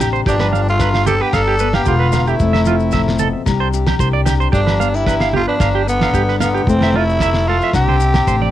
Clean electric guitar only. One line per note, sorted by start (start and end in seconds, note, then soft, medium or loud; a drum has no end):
0.00 0.08 G4 medium
0.13 0.20 C5 medium
0.27 0.34 G4 medium
0.40 0.47 B4 medium
0.53 0.60 F5 medium
0.81 0.88 B4 medium
0.94 1.01 F5 medium
1.06 1.14 G4 medium
1.21 1.28 B4 medium
1.33 1.41 F5 medium
1.48 1.54 G4 medium
1.60 1.68 B4 medium
1.74 1.81 F5 medium
1.86 1.94 G4 medium
2.00 2.07 B4 medium
2.13 2.20 F5 medium
2.28 2.34 G4 medium
2.53 2.60 E5 medium
2.67 2.75 F4 medium
2.93 3.01 E5 medium
3.19 3.27 A4 medium
3.60 3.67 C5 medium
3.88 3.94 G4 medium
4.00 4.08 C5 medium
4.13 4.20 D5 medium
4.26 4.33 G4 medium
4.40 4.47 C5 medium
4.52 4.60 G4 medium
4.67 4.74 B4 medium
4.80 4.88 F5 medium
5.07 5.14 B4 medium
5.21 5.28 F5 medium
5.34 5.41 G4 medium
5.48 5.54 B4 medium
5.61 5.68 F5 medium
5.75 5.82 G4 medium
5.87 muted clean electric guitar stroke medium
6.02 6.09 F5 medium
6.14 6.22 G4 medium
6.29 6.35 B4 medium
6.40 6.48 F5 medium
6.54 6.61 G4 medium
6.83 6.89 E5 medium
6.96 7.02 F4 medium
7.22 7.29 E5 medium
7.50 7.56 A4 medium
7.64 7.70 E5 medium
7.89 7.95 C5 medium
8.16 8.22 G4 medium
8.28 8.35 C5 medium
8.42 8.48 D5 medium